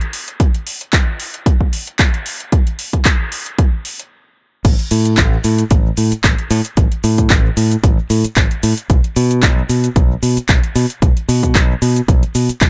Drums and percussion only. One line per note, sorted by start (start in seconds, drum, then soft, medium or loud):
0.01 closed hi-hat soft
0.13 open hi-hat loud
0.28 closed hi-hat medium
0.40 kick loud
0.40 closed hi-hat medium
0.55 closed hi-hat soft
0.67 open hi-hat loud
0.81 closed hi-hat soft
0.93 kick loud
0.93 clap loud
0.93 closed hi-hat medium
1.20 open hi-hat loud
1.34 closed hi-hat medium
1.46 kick loud
1.46 closed hi-hat medium
1.61 kick medium
1.73 open hi-hat loud
1.87 closed hi-hat medium
1.99 kick loud
1.99 clap loud
1.99 closed hi-hat medium
2.14 closed hi-hat soft
2.26 open hi-hat loud
2.40 closed hi-hat soft
2.52 kick loud
2.52 closed hi-hat medium
2.67 closed hi-hat soft
2.79 open hi-hat loud
2.93 kick medium
2.93 closed hi-hat medium
3.05 kick loud
3.05 clap loud
3.05 closed hi-hat medium
3.32 open hi-hat loud
3.46 closed hi-hat medium
3.58 kick loud
3.58 closed hi-hat medium
3.85 open hi-hat loud
4.00 closed hi-hat medium
4.65 kick loud
4.65 closed hi-hat medium
4.65 crash loud
4.65 shaker soft
4.79 closed hi-hat soft
4.91 open hi-hat loud
4.91 shaker medium
5.05 closed hi-hat medium
5.05 shaker soft
5.17 kick loud
5.17 clap loud
5.17 closed hi-hat medium
5.17 shaker soft
5.44 open hi-hat loud
5.44 shaker medium
5.58 closed hi-hat medium
5.58 shaker soft
5.71 kick loud
5.71 closed hi-hat medium
5.71 shaker soft
5.97 open hi-hat loud
5.97 shaker medium
6.12 closed hi-hat medium
6.12 shaker soft
6.24 kick loud
6.24 clap loud
6.24 closed hi-hat medium
6.24 shaker soft
6.38 closed hi-hat soft
6.51 open hi-hat loud
6.51 shaker medium
6.65 closed hi-hat medium
6.65 shaker soft
6.77 kick loud
6.77 closed hi-hat medium
6.77 shaker soft
6.92 closed hi-hat soft
7.04 open hi-hat loud
7.04 shaker medium
7.18 kick medium
7.18 closed hi-hat medium
7.18 shaker soft
7.30 kick loud
7.30 clap loud
7.30 closed hi-hat medium
7.30 shaker soft
7.57 open hi-hat loud
7.57 shaker medium
7.72 closed hi-hat medium
7.72 shaker soft
7.84 kick loud
7.84 closed hi-hat medium
7.84 shaker soft
8.10 open hi-hat loud
8.10 shaker medium
8.24 closed hi-hat medium
8.24 shaker soft
8.37 kick loud
8.37 clap loud
8.37 closed hi-hat medium
8.37 shaker soft
8.51 closed hi-hat soft
8.63 open hi-hat loud
8.63 shaker medium
8.78 closed hi-hat medium
8.78 shaker soft
8.90 kick loud
8.90 closed hi-hat medium
8.90 shaker soft
9.04 closed hi-hat soft
9.16 open hi-hat loud
9.16 shaker medium
9.31 closed hi-hat medium
9.31 shaker soft
9.43 kick loud
9.43 clap loud
9.43 closed hi-hat medium
9.43 shaker soft
9.69 open hi-hat loud
9.69 shaker medium
9.84 closed hi-hat medium
9.84 shaker soft
9.96 kick loud
9.96 closed hi-hat medium
9.96 shaker soft
10.23 open hi-hat loud
10.23 shaker medium
10.37 closed hi-hat soft
10.37 shaker soft
10.49 kick loud
10.49 clap loud
10.49 closed hi-hat medium
10.49 shaker soft
10.64 closed hi-hat soft
10.76 open hi-hat loud
10.76 shaker medium
10.90 closed hi-hat medium
10.90 shaker soft
11.02 kick loud
11.02 closed hi-hat medium
11.02 shaker soft
11.17 closed hi-hat soft
11.29 open hi-hat loud
11.29 shaker medium
11.43 kick medium
11.43 closed hi-hat medium
11.43 shaker soft
11.55 kick loud
11.55 clap loud
11.55 closed hi-hat medium
11.55 shaker soft
11.82 open hi-hat loud
11.82 shaker medium
11.96 closed hi-hat medium
11.96 shaker soft
12.08 kick loud
12.08 closed hi-hat medium
12.08 shaker soft
12.23 closed hi-hat soft
12.35 open hi-hat loud
12.35 shaker medium
12.49 closed hi-hat soft
12.49 shaker soft
12.61 kick loud
12.61 clap loud
12.61 closed hi-hat medium
12.61 shaker soft